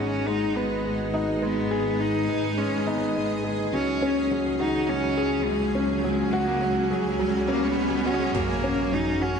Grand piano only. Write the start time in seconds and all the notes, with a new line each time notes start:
Already playing: G#3 D#4
0.00 G#4
0.27 G#3
0.56 B4
0.85 G#3
1.14 D#4
1.42 G#3
1.71 G#4
2.00 G#3
2.29 B4
2.57 G#3
2.87 D#4
3.15 G#3
3.44 G#4
3.73 F#3
4.02 C#4
4.31 F#3
4.60 F#4
4.88 F#3
5.17 G#4
5.46 F#3
5.75 C#4
6.04 F#3
6.33 F#4
6.62 F#3
6.90 G#4
7.19 F#3
7.48 C#4
7.77 F#3
8.06 F#4
8.35 F#3
8.64 C#4
8.93 F#3
9.21 F#4